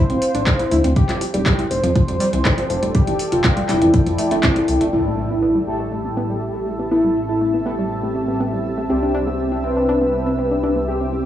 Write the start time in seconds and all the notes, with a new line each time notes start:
Already playing: C4 G4 C5 F5
0.10 D1 C4, closed hi-hat
0.22 open hi-hat
0.35 A1 D4, closed hi-hat
0.47 D4, kick, clap, closed hi-hat
0.59 E4, closed hi-hat
0.71 D2 E4, open hi-hat
0.84 D2 C4, closed hi-hat
0.96 G4 A4, kick, closed hi-hat
1.09 F1 F3, clap, closed hi-hat
1.21 F3 D5, open hi-hat
1.34 F1 G3 G4, closed hi-hat
1.46 G3, kick, clap, closed hi-hat
1.59 E3 G5, closed hi-hat
1.71 F1 C5, open hi-hat
1.83 F2 F3, closed hi-hat
1.95 F3, kick, closed hi-hat
2.08 F2 G3, closed hi-hat
2.20 G3, open hi-hat
2.33 C2 E3, closed hi-hat
2.45 kick, clap, closed hi-hat
2.58 F3, closed hi-hat
2.70 F1 F3, open hi-hat
2.83 F1 G3, closed hi-hat
2.95 G3 G4, kick, closed hi-hat
3.07 F1 E3, closed hi-hat
3.19 open hi-hat
3.32 F1 F3 F4, closed hi-hat
3.44 F3, kick, clap, closed hi-hat
3.57 G3, closed hi-hat
3.69 F1 G3 E4, clap, open hi-hat
3.82 F2 E3, closed hi-hat
3.94 kick, closed hi-hat
4.06 F2 F3, closed hi-hat
4.18 A3, open hi-hat
4.31 F1 A3, closed hi-hat
4.43 C4, kick, clap, closed hi-hat
4.56 F3, closed hi-hat
4.68 C2, open hi-hat
4.81 F1 A3, closed hi-hat
4.93 A1 A3 E4 G4 A4 E5 A5 E6, impact
5.06 A3
5.18 A3
5.30 B3 C4 E4
5.42 B3
5.55 G3
5.67 A3 E4 G4 A4
5.80 A3
5.92 A3 E5
6.05 B3
6.17 B3
6.30 G3
6.55 A3
6.67 A3
6.79 B3
6.91 A3 B3 E4 A4
7.04 G3
7.29 A3 E4
7.41 A3
7.54 B3
7.66 A3 B3 E4 G4 A4
7.79 G3
8.03 A3
8.15 A3
8.28 B3
8.40 B3
8.53 G3
8.78 A3
8.90 C2 C3 G3 C4 G4
9.02 D4
9.14 D4
9.27 B3 G4
9.52 C4
9.64 C3 G3 C4 B4
9.77 D4
9.89 D4
10.02 B3
10.26 C4
10.38 C4
10.51 D4
10.63 D4
10.76 B3
10.88 C3 G3 C4 G4 D6
11.01 C4
11.13 C4